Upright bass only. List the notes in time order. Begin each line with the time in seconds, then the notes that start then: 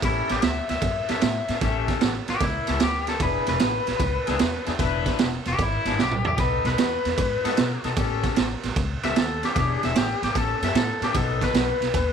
0.03 A1
0.30 A1
0.43 D2
0.69 D2
0.82 F#2
1.09 F#2
1.23 A2
1.49 A2
1.62 A1
2.01 A1
2.29 A1
2.40 C#2
2.69 C#2
2.82 D2
3.20 E1
3.48 E1
3.61 A1
3.87 A1
3.99 C#2
4.28 C#2
4.41 E2
4.67 E2
4.79 E1
5.20 E1
5.46 E1
5.59 G#1
5.85 G#1
5.99 B1
6.38 B1
6.65 B1
6.78 E2
7.05 E2
7.18 G#2
7.45 G#2
7.58 B2
7.85 B2
7.97 A1
8.38 A1
8.64 A1
8.76 C#2
9.04 C#2
9.16 D#2
9.56 E1
9.83 E1
9.95 A1
10.22 A1
10.36 A1
10.62 F#2
10.74 A2
11.01 A2
11.15 B1
11.54 B1
11.81 B1
11.94 D#2